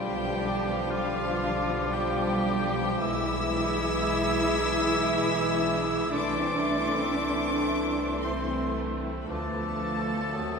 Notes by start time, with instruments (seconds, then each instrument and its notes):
Already playing: double bass section B1, viola section D3 G3, trombone section F3 G3, bassoon F3, violin section G3 F4 G5, french horn section G3, cello section G3, oboe G4, clarinet G4, flute D6
0.16 violin section B3
0.42 violin section D4
0.54 violin section A5
0.64 violin section B3 G5
0.71 violin section F5
0.81 violin section G5
0.90 cello section F3, french horn section F3, violin section G3 F5, oboe F4
1.16 violin section B3
1.43 violin section D4
1.69 violin section B3
1.91 cello section G3, french horn section G3, violin section G3 G5, oboe G4
2.19 violin section B3
2.45 violin section D4
2.72 violin section B3
2.99 viola section E3 G#3, bassoon E3, trombone section E3 G#3, violin section G#3 E4 E6, french horn section E4, cello section E4, clarinet G#4, oboe E5
3.26 violin section B3
3.52 violin section D4
3.76 violin section B3
4.03 violin section G#3
4.30 violin section B3
4.56 violin section D4
4.83 violin section B3
5.09 violin section G#3
5.35 violin section B3
5.60 violin section D4
5.87 violin section B3
6.10 double bass section C2, viola section A3, trombone section A3, violin section A3 D6, french horn section D4, cello section D4, clarinet A4, oboe D5, flute C6
6.39 violin section C4
6.65 violin section A3
6.91 violin section C4
7.17 violin section A3
7.45 violin section C4
7.70 violin section A3
7.95 violin section C4
8.20 violin section A3 C6, cello section C4, french horn section C4, oboe C5
8.48 violin section C4
8.74 violin section A3
9.02 violin section C4
9.22 violin section A3 B5
9.26 double bass section D2, viola section F3, bassoon F3, trombone section F3 B3, cello section A3, french horn section A3, violin section D4, oboe A4, clarinet B4, flute D6
9.30 violin section A5
9.53 violin section B3
9.80 violin section A3
10.06 violin section B3
10.34 double bass section D#2, viola section D#3, bassoon F#3, trombone section F#3 C4, violin section A3 F#4, clarinet C5, flute D#6